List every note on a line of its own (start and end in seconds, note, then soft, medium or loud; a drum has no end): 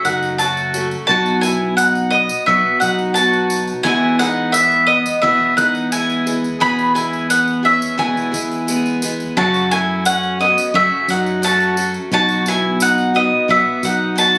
0.05 0.95 F#1 medium
0.05 0.38 F#3 soft
0.05 0.39 A3 medium
0.05 0.39 C#4 medium
0.05 0.37 D#4 medium
0.05 0.40 F#4 medium
0.05 0.37 F#5 medium
0.05 tambourine medium
0.23 tambourine soft
0.38 0.74 F#3 medium
0.38 0.75 A3 medium
0.38 0.74 C#4 medium
0.38 0.88 F#4 medium
0.38 0.73 F#4 medium
0.38 0.87 A5 loud
0.38 tambourine medium
0.57 tambourine soft
0.74 1.09 F#3 soft
0.74 1.10 A3 soft
0.74 1.09 C#4 soft
0.74 1.09 F#4 soft
0.74 tambourine medium
0.91 tambourine soft
1.07 2.28 B1 loud
1.07 1.44 B2 medium
1.07 1.44 F#3 medium
1.07 1.44 B3 medium
1.07 1.44 D#4 medium
1.07 1.40 F#4 medium
1.07 1.40 A5 loud
1.07 tambourine soft
1.11 1.42 F#4 medium
1.26 tambourine soft
1.41 1.76 E4 medium
1.41 2.47 F#4 medium
1.41 1.75 G#5 medium
1.41 tambourine medium
1.46 2.48 B3 soft
1.77 2.10 D#4 medium
1.77 2.13 F#5 medium
1.77 tambourine medium
1.95 tambourine soft
2.10 2.45 B3 medium
2.10 2.47 D#5 medium
2.10 tambourine soft
2.29 tambourine medium
2.46 2.62 B1 loud
2.46 2.82 B2 medium
2.46 2.82 F#3 medium
2.46 2.79 B3 medium
2.46 2.82 B3 medium
2.46 2.80 F#4 medium
2.46 2.79 E5 medium
2.80 3.71 B1 medium
2.80 3.16 B3 soft
2.80 3.13 D#4 medium
2.80 3.16 D#4 medium
2.80 3.16 F#4 medium
2.80 3.13 F#5 medium
2.80 tambourine medium
2.99 tambourine soft
3.14 3.85 F#3 medium
3.14 3.86 B3 medium
3.14 3.86 D#4 medium
3.14 3.64 F#4 medium
3.14 3.86 F#4 medium
3.14 3.63 A5 medium
3.14 tambourine medium
3.33 tambourine soft
3.50 tambourine medium
3.67 tambourine soft
3.83 4.20 E2 medium
3.83 5.04 E2 loud
3.83 4.20 B2 medium
3.83 4.20 E3 medium
3.83 4.20 G#3 medium
3.83 4.20 B3 medium
3.83 4.17 E4 medium
3.83 4.19 G#4 medium
3.83 4.16 G#5 loud
3.83 tambourine soft
4.19 5.22 E3 soft
4.19 5.22 G#3 soft
4.19 5.23 B3 medium
4.19 4.52 D#4 medium
4.19 5.23 G#4 soft
4.19 4.52 F#5 medium
4.19 tambourine medium
4.52 4.86 B3 medium
4.52 4.85 E5 medium
4.52 tambourine medium
4.72 tambourine soft
4.87 5.20 B3 medium
4.87 5.20 D#5 medium
4.87 tambourine soft
5.06 tambourine medium
5.22 5.57 E2 medium
5.22 5.38 E2 loud
5.22 5.58 B2 medium
5.22 5.58 E3 medium
5.22 5.58 G#3 medium
5.22 5.55 B3 medium
5.22 5.57 B3 medium
5.22 5.57 G#4 medium
5.22 5.56 E5 loud
5.56 6.47 E2 medium
5.56 5.92 G#3 soft
5.56 5.92 B3 medium
5.56 5.89 D#4 medium
5.56 5.92 G#4 medium
5.56 5.89 F#5 medium
5.56 tambourine medium
5.60 5.91 E3 soft
5.75 tambourine soft
5.91 6.27 E3 medium
5.91 6.27 G#3 medium
5.91 6.26 B3 medium
5.91 6.40 E4 medium
5.91 6.25 G#4 medium
5.91 6.40 G#5 medium
5.91 tambourine medium
6.10 tambourine soft
6.26 6.60 E3 soft
6.26 6.60 G#3 soft
6.26 6.60 B3 soft
6.26 6.61 G#4 medium
6.26 tambourine medium
6.44 tambourine soft
6.59 6.95 E2 medium
6.59 7.80 E2 medium
6.59 6.95 B2 medium
6.59 6.95 E3 medium
6.59 6.95 G#3 medium
6.59 6.94 B3 medium
6.59 6.92 G#4 loud
6.59 6.93 G#4 medium
6.59 6.95 B5 loud
6.59 tambourine soft
6.79 tambourine soft
6.94 7.64 E3 soft
6.94 7.63 G#3 soft
6.94 7.62 B3 soft
6.94 7.28 E4 medium
6.94 7.62 G#4 medium
6.94 7.30 G#5 medium
6.94 tambourine medium
7.13 tambourine soft
7.30 7.62 B3 medium
7.30 7.62 F#5 medium
7.30 tambourine loud
7.47 tambourine soft
7.63 7.97 E3 soft
7.63 7.97 G#3 soft
7.63 7.97 B3 medium
7.63 7.97 C#4 medium
7.63 7.98 G#4 medium
7.63 7.97 E5 medium
7.63 tambourine soft
7.82 tambourine medium
7.98 8.33 E2 medium
7.98 8.14 E2 medium
7.98 8.33 B2 medium
7.98 8.33 E3 medium
7.98 8.32 G#3 medium
7.98 8.31 B3 medium
7.98 8.98 E4 medium
7.98 8.30 G#4 medium
7.98 8.98 G#5 loud
7.98 tambourine soft
8.17 tambourine soft
8.32 9.22 E2 medium
8.32 8.66 E3 soft
8.32 8.67 G#3 soft
8.32 8.67 B3 medium
8.32 8.67 G#4 medium
8.32 tambourine medium
8.51 tambourine soft
8.67 9.02 E3 medium
8.67 9.02 G#3 medium
8.67 9.02 B3 medium
8.67 9.01 G#4 medium
8.67 tambourine medium
8.86 tambourine soft
9.02 9.37 E3 soft
9.02 9.37 G#3 soft
9.02 9.37 B3 soft
9.02 9.37 G#4 medium
9.02 tambourine medium
9.20 tambourine soft
9.37 9.71 F#2 medium
9.37 10.55 F#2 medium
9.37 9.71 C#3 medium
9.37 9.71 F#3 medium
9.37 9.71 A3 medium
9.37 9.71 C#4 medium
9.37 9.69 F#4 medium
9.37 9.70 F#4 medium
9.37 9.69 A5 loud
9.37 tambourine soft
9.54 tambourine soft
9.71 10.42 F#3 soft
9.71 10.40 A3 soft
9.71 10.39 C#4 soft
9.71 10.04 E4 medium
9.71 10.39 F#4 soft
9.71 10.03 G#5 medium
9.71 tambourine medium
10.05 10.38 C#4 medium
10.05 10.41 F#5 medium
10.05 tambourine medium
10.23 tambourine soft
10.39 10.73 F#3 soft
10.39 10.74 A3 soft
10.39 10.73 B3 medium
10.39 10.74 C#4 soft
10.39 10.74 F#4 medium
10.39 10.76 D#5 medium
10.39 tambourine soft
10.58 tambourine medium
10.74 11.08 F#2 medium
10.74 10.89 F#2 medium
10.74 11.08 C#3 medium
10.74 11.08 F#3 medium
10.74 11.09 A3 medium
10.74 11.06 C#4 medium
10.74 11.08 C#4 medium
10.74 11.07 F#4 medium
10.74 11.10 E5 loud
11.08 11.97 F#2 medium
11.08 11.41 F#3 soft
11.08 11.42 A3 soft
11.08 11.43 C#4 medium
11.08 11.41 D#4 medium
11.08 11.43 F#4 medium
11.08 11.44 F#5 medium
11.08 tambourine medium
11.26 tambourine soft
11.42 11.77 F#3 medium
11.42 11.77 A3 medium
11.42 11.78 C#4 medium
11.42 11.76 F#4 medium
11.42 11.92 F#4 medium
11.42 11.92 A5 loud
11.42 tambourine medium
11.60 tambourine soft
11.77 12.11 F#3 soft
11.77 12.12 A3 soft
11.77 12.12 C#4 soft
11.77 12.12 F#4 soft
11.77 tambourine medium
11.94 tambourine soft
12.11 13.30 B1 loud
12.11 12.46 B2 medium
12.11 12.46 F#3 medium
12.11 12.47 B3 medium
12.11 12.47 D#4 medium
12.11 12.44 F#4 medium
12.11 12.45 F#4 medium
12.11 12.48 A5 loud
12.11 tambourine soft
12.29 tambourine soft
12.46 13.16 B3 soft
12.46 12.79 E4 medium
12.46 13.13 F#4 medium
12.46 12.79 G#5 medium
12.46 tambourine medium
12.80 13.14 D#4 medium
12.80 13.13 F#5 medium
12.80 tambourine loud
12.98 tambourine soft
13.14 13.48 B3 soft
13.14 13.48 B3 medium
13.14 13.49 D#4 medium
13.14 13.49 F#4 soft
13.14 13.51 D#5 medium
13.14 tambourine soft
13.48 13.64 B1 loud
13.48 13.83 B2 medium
13.48 13.83 F#3 medium
13.48 13.84 B3 medium
13.48 13.82 B3 medium
13.48 13.81 F#4 medium
13.48 13.84 E5 medium
13.82 14.38 B1 medium
13.82 14.15 B3 soft
13.82 14.16 D#4 soft
13.82 14.16 D#4 medium
13.82 14.17 F#4 medium
13.82 14.18 F#5 medium
13.82 tambourine medium
14.15 14.38 F#3 medium
14.15 14.38 B3 medium
14.15 14.38 D#4 medium
14.15 14.38 F#4 medium
14.15 14.38 A5 loud
14.15 tambourine medium
14.20 14.38 F#4 medium
14.35 tambourine soft